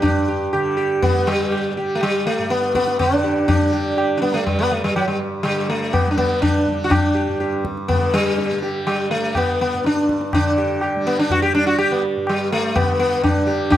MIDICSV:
0, 0, Header, 1, 4, 480
1, 0, Start_track
1, 0, Tempo, 490998
1, 35, Time_signature, 7, 2, 24, 8
1, 7715, Tempo, 485830
1, 13523, End_track
2, 0, Start_track
2, 0, Title_t, "Sitar"
2, 0, Program_c, 0, 104
2, 20, Note_on_c, 0, 62, 77
2, 272, Note_on_c, 0, 67, 35
2, 498, Note_off_c, 0, 67, 0
2, 516, Note_on_c, 0, 67, 34
2, 712, Note_off_c, 0, 62, 0
2, 741, Note_off_c, 0, 67, 0
2, 751, Note_on_c, 0, 67, 34
2, 978, Note_off_c, 0, 67, 0
2, 1002, Note_on_c, 0, 59, 84
2, 1242, Note_on_c, 0, 55, 76
2, 1248, Note_off_c, 0, 59, 0
2, 1689, Note_off_c, 0, 55, 0
2, 1732, Note_on_c, 0, 67, 33
2, 1909, Note_on_c, 0, 57, 54
2, 1951, Note_off_c, 0, 67, 0
2, 1966, Note_off_c, 0, 57, 0
2, 1983, Note_on_c, 0, 55, 71
2, 2211, Note_off_c, 0, 55, 0
2, 2215, Note_on_c, 0, 57, 75
2, 2447, Note_on_c, 0, 59, 79
2, 2456, Note_off_c, 0, 57, 0
2, 2669, Note_off_c, 0, 59, 0
2, 2691, Note_on_c, 0, 59, 84
2, 2922, Note_off_c, 0, 59, 0
2, 2926, Note_on_c, 0, 62, 80
2, 3166, Note_on_c, 0, 67, 33
2, 3388, Note_off_c, 0, 67, 0
2, 3390, Note_off_c, 0, 62, 0
2, 3402, Note_on_c, 0, 62, 83
2, 3642, Note_on_c, 0, 67, 33
2, 3867, Note_off_c, 0, 67, 0
2, 3879, Note_on_c, 0, 67, 32
2, 4070, Note_off_c, 0, 62, 0
2, 4082, Note_on_c, 0, 62, 52
2, 4105, Note_off_c, 0, 67, 0
2, 4118, Note_off_c, 0, 62, 0
2, 4123, Note_on_c, 0, 59, 74
2, 4242, Note_on_c, 0, 57, 69
2, 4248, Note_off_c, 0, 59, 0
2, 4361, Note_off_c, 0, 57, 0
2, 4365, Note_on_c, 0, 55, 63
2, 4484, Note_on_c, 0, 59, 70
2, 4488, Note_off_c, 0, 55, 0
2, 4608, Note_off_c, 0, 59, 0
2, 4608, Note_on_c, 0, 57, 65
2, 4729, Note_off_c, 0, 57, 0
2, 4733, Note_on_c, 0, 55, 65
2, 4847, Note_off_c, 0, 55, 0
2, 4850, Note_on_c, 0, 54, 64
2, 4959, Note_off_c, 0, 54, 0
2, 4963, Note_on_c, 0, 55, 52
2, 5075, Note_off_c, 0, 55, 0
2, 5310, Note_on_c, 0, 55, 67
2, 5564, Note_off_c, 0, 55, 0
2, 5568, Note_on_c, 0, 57, 66
2, 5796, Note_on_c, 0, 59, 75
2, 5812, Note_off_c, 0, 57, 0
2, 5968, Note_off_c, 0, 59, 0
2, 5972, Note_on_c, 0, 62, 58
2, 6033, Note_off_c, 0, 62, 0
2, 6037, Note_on_c, 0, 59, 78
2, 6271, Note_off_c, 0, 59, 0
2, 6275, Note_on_c, 0, 62, 83
2, 6688, Note_on_c, 0, 66, 55
2, 6701, Note_off_c, 0, 62, 0
2, 6745, Note_on_c, 0, 62, 74
2, 6758, Note_off_c, 0, 66, 0
2, 6984, Note_on_c, 0, 67, 32
2, 7213, Note_off_c, 0, 67, 0
2, 7234, Note_on_c, 0, 67, 34
2, 7430, Note_off_c, 0, 62, 0
2, 7458, Note_off_c, 0, 67, 0
2, 7707, Note_on_c, 0, 59, 78
2, 7956, Note_on_c, 0, 55, 76
2, 7959, Note_off_c, 0, 59, 0
2, 8405, Note_off_c, 0, 55, 0
2, 8443, Note_on_c, 0, 67, 32
2, 8665, Note_off_c, 0, 67, 0
2, 8679, Note_on_c, 0, 55, 67
2, 8914, Note_off_c, 0, 55, 0
2, 8918, Note_on_c, 0, 57, 63
2, 9167, Note_off_c, 0, 57, 0
2, 9176, Note_on_c, 0, 59, 71
2, 9403, Note_off_c, 0, 59, 0
2, 9415, Note_on_c, 0, 59, 73
2, 9656, Note_off_c, 0, 59, 0
2, 9663, Note_on_c, 0, 62, 74
2, 10127, Note_off_c, 0, 62, 0
2, 10139, Note_on_c, 0, 62, 81
2, 10370, Note_on_c, 0, 67, 35
2, 10590, Note_off_c, 0, 67, 0
2, 10609, Note_on_c, 0, 67, 33
2, 10830, Note_off_c, 0, 67, 0
2, 10848, Note_off_c, 0, 62, 0
2, 10852, Note_on_c, 0, 59, 81
2, 10971, Note_off_c, 0, 59, 0
2, 10977, Note_on_c, 0, 62, 75
2, 11093, Note_off_c, 0, 62, 0
2, 11096, Note_on_c, 0, 66, 80
2, 11199, Note_off_c, 0, 66, 0
2, 11203, Note_on_c, 0, 67, 76
2, 11321, Note_off_c, 0, 67, 0
2, 11325, Note_on_c, 0, 62, 81
2, 11441, Note_off_c, 0, 62, 0
2, 11445, Note_on_c, 0, 66, 78
2, 11556, Note_off_c, 0, 66, 0
2, 11560, Note_on_c, 0, 67, 83
2, 11685, Note_off_c, 0, 67, 0
2, 11690, Note_on_c, 0, 59, 64
2, 11798, Note_off_c, 0, 59, 0
2, 12064, Note_on_c, 0, 55, 68
2, 12288, Note_off_c, 0, 55, 0
2, 12292, Note_on_c, 0, 57, 74
2, 12520, Note_on_c, 0, 59, 78
2, 12533, Note_off_c, 0, 57, 0
2, 12745, Note_off_c, 0, 59, 0
2, 12757, Note_on_c, 0, 59, 80
2, 12980, Note_off_c, 0, 59, 0
2, 12993, Note_on_c, 0, 62, 85
2, 13224, Note_on_c, 0, 67, 32
2, 13445, Note_off_c, 0, 62, 0
2, 13452, Note_off_c, 0, 67, 0
2, 13457, Note_on_c, 0, 62, 79
2, 13523, Note_off_c, 0, 62, 0
2, 13523, End_track
3, 0, Start_track
3, 0, Title_t, "Tanpura"
3, 0, Program_c, 1, 104
3, 0, Note_on_c, 1, 43, 55
3, 0, Note_on_c, 1, 50, 49
3, 0, Note_on_c, 1, 55, 55
3, 518, Note_off_c, 1, 50, 0
3, 522, Note_on_c, 1, 50, 56
3, 1118, Note_off_c, 1, 55, 0
3, 1118, Note_on_c, 1, 55, 55
3, 1724, Note_off_c, 1, 55, 0
3, 1724, Note_on_c, 1, 55, 52
3, 2329, Note_off_c, 1, 43, 0
3, 2333, Note_on_c, 1, 43, 51
3, 2928, Note_off_c, 1, 50, 0
3, 2932, Note_on_c, 1, 50, 53
3, 3539, Note_off_c, 1, 55, 0
3, 3539, Note_on_c, 1, 55, 54
3, 4128, Note_off_c, 1, 55, 0
3, 4128, Note_on_c, 1, 55, 50
3, 4726, Note_off_c, 1, 43, 0
3, 4730, Note_on_c, 1, 43, 48
3, 5321, Note_off_c, 1, 50, 0
3, 5325, Note_on_c, 1, 50, 53
3, 5926, Note_off_c, 1, 55, 0
3, 5926, Note_on_c, 1, 55, 53
3, 6529, Note_off_c, 1, 55, 0
3, 6529, Note_on_c, 1, 55, 50
3, 7112, Note_off_c, 1, 43, 0
3, 7116, Note_on_c, 1, 43, 54
3, 7710, Note_off_c, 1, 50, 0
3, 7714, Note_on_c, 1, 50, 52
3, 8332, Note_off_c, 1, 55, 0
3, 8332, Note_on_c, 1, 55, 50
3, 8935, Note_off_c, 1, 55, 0
3, 8935, Note_on_c, 1, 55, 50
3, 9529, Note_off_c, 1, 43, 0
3, 9533, Note_on_c, 1, 43, 51
3, 10134, Note_off_c, 1, 50, 0
3, 10138, Note_on_c, 1, 50, 54
3, 10742, Note_off_c, 1, 55, 0
3, 10742, Note_on_c, 1, 55, 56
3, 11332, Note_off_c, 1, 55, 0
3, 11332, Note_on_c, 1, 55, 52
3, 11931, Note_off_c, 1, 43, 0
3, 11935, Note_on_c, 1, 43, 57
3, 12522, Note_off_c, 1, 50, 0
3, 12526, Note_on_c, 1, 50, 54
3, 13131, Note_off_c, 1, 55, 0
3, 13131, Note_on_c, 1, 55, 56
3, 13523, Note_off_c, 1, 43, 0
3, 13523, Note_off_c, 1, 50, 0
3, 13523, Note_off_c, 1, 55, 0
3, 13523, End_track
4, 0, Start_track
4, 0, Title_t, "Tabla"
4, 33, Note_on_c, 9, 60, 86
4, 33, Note_on_c, 9, 64, 83
4, 131, Note_off_c, 9, 60, 0
4, 131, Note_off_c, 9, 64, 0
4, 520, Note_on_c, 9, 60, 61
4, 617, Note_off_c, 9, 60, 0
4, 1004, Note_on_c, 9, 63, 66
4, 1004, Note_on_c, 9, 64, 62
4, 1102, Note_off_c, 9, 63, 0
4, 1102, Note_off_c, 9, 64, 0
4, 1248, Note_on_c, 9, 60, 51
4, 1345, Note_off_c, 9, 60, 0
4, 1489, Note_on_c, 9, 60, 65
4, 1587, Note_off_c, 9, 60, 0
4, 1965, Note_on_c, 9, 60, 66
4, 2063, Note_off_c, 9, 60, 0
4, 2206, Note_on_c, 9, 60, 52
4, 2303, Note_off_c, 9, 60, 0
4, 2446, Note_on_c, 9, 62, 64
4, 2544, Note_off_c, 9, 62, 0
4, 2565, Note_on_c, 9, 62, 48
4, 2663, Note_off_c, 9, 62, 0
4, 2687, Note_on_c, 9, 37, 55
4, 2785, Note_off_c, 9, 37, 0
4, 2811, Note_on_c, 9, 62, 54
4, 2908, Note_off_c, 9, 62, 0
4, 2928, Note_on_c, 9, 60, 70
4, 2928, Note_on_c, 9, 64, 60
4, 3025, Note_off_c, 9, 60, 0
4, 3025, Note_off_c, 9, 64, 0
4, 3409, Note_on_c, 9, 60, 92
4, 3409, Note_on_c, 9, 64, 80
4, 3507, Note_off_c, 9, 60, 0
4, 3507, Note_off_c, 9, 64, 0
4, 3891, Note_on_c, 9, 60, 66
4, 3989, Note_off_c, 9, 60, 0
4, 4369, Note_on_c, 9, 63, 63
4, 4369, Note_on_c, 9, 64, 63
4, 4467, Note_off_c, 9, 63, 0
4, 4467, Note_off_c, 9, 64, 0
4, 4849, Note_on_c, 9, 60, 66
4, 4946, Note_off_c, 9, 60, 0
4, 5331, Note_on_c, 9, 60, 70
4, 5429, Note_off_c, 9, 60, 0
4, 5805, Note_on_c, 9, 60, 64
4, 5805, Note_on_c, 9, 64, 62
4, 5902, Note_off_c, 9, 60, 0
4, 5902, Note_off_c, 9, 64, 0
4, 6042, Note_on_c, 9, 64, 49
4, 6140, Note_off_c, 9, 64, 0
4, 6283, Note_on_c, 9, 60, 66
4, 6283, Note_on_c, 9, 64, 57
4, 6381, Note_off_c, 9, 60, 0
4, 6381, Note_off_c, 9, 64, 0
4, 6522, Note_on_c, 9, 64, 43
4, 6620, Note_off_c, 9, 64, 0
4, 6758, Note_on_c, 9, 60, 91
4, 6758, Note_on_c, 9, 64, 80
4, 6856, Note_off_c, 9, 60, 0
4, 6856, Note_off_c, 9, 64, 0
4, 7239, Note_on_c, 9, 62, 64
4, 7337, Note_off_c, 9, 62, 0
4, 7359, Note_on_c, 9, 62, 49
4, 7456, Note_off_c, 9, 62, 0
4, 7475, Note_on_c, 9, 37, 50
4, 7573, Note_off_c, 9, 37, 0
4, 7600, Note_on_c, 9, 62, 51
4, 7697, Note_off_c, 9, 62, 0
4, 7717, Note_on_c, 9, 63, 67
4, 7717, Note_on_c, 9, 64, 58
4, 7815, Note_off_c, 9, 63, 0
4, 7815, Note_off_c, 9, 64, 0
4, 8200, Note_on_c, 9, 62, 66
4, 8299, Note_off_c, 9, 62, 0
4, 8439, Note_on_c, 9, 62, 50
4, 8538, Note_off_c, 9, 62, 0
4, 8680, Note_on_c, 9, 60, 67
4, 8779, Note_off_c, 9, 60, 0
4, 9156, Note_on_c, 9, 60, 65
4, 9156, Note_on_c, 9, 64, 58
4, 9255, Note_off_c, 9, 60, 0
4, 9255, Note_off_c, 9, 64, 0
4, 9644, Note_on_c, 9, 62, 64
4, 9743, Note_off_c, 9, 62, 0
4, 9769, Note_on_c, 9, 62, 51
4, 9868, Note_off_c, 9, 62, 0
4, 9888, Note_on_c, 9, 37, 52
4, 9987, Note_off_c, 9, 37, 0
4, 10007, Note_on_c, 9, 62, 53
4, 10105, Note_off_c, 9, 62, 0
4, 10124, Note_on_c, 9, 60, 91
4, 10124, Note_on_c, 9, 64, 84
4, 10223, Note_off_c, 9, 60, 0
4, 10223, Note_off_c, 9, 64, 0
4, 10601, Note_on_c, 9, 60, 68
4, 10700, Note_off_c, 9, 60, 0
4, 11082, Note_on_c, 9, 63, 69
4, 11082, Note_on_c, 9, 64, 63
4, 11181, Note_off_c, 9, 63, 0
4, 11181, Note_off_c, 9, 64, 0
4, 11562, Note_on_c, 9, 60, 69
4, 11661, Note_off_c, 9, 60, 0
4, 12040, Note_on_c, 9, 60, 69
4, 12139, Note_off_c, 9, 60, 0
4, 12523, Note_on_c, 9, 60, 68
4, 12523, Note_on_c, 9, 64, 61
4, 12622, Note_off_c, 9, 60, 0
4, 12622, Note_off_c, 9, 64, 0
4, 13000, Note_on_c, 9, 60, 65
4, 13000, Note_on_c, 9, 64, 60
4, 13098, Note_off_c, 9, 60, 0
4, 13098, Note_off_c, 9, 64, 0
4, 13474, Note_on_c, 9, 60, 92
4, 13474, Note_on_c, 9, 64, 78
4, 13523, Note_off_c, 9, 60, 0
4, 13523, Note_off_c, 9, 64, 0
4, 13523, End_track
0, 0, End_of_file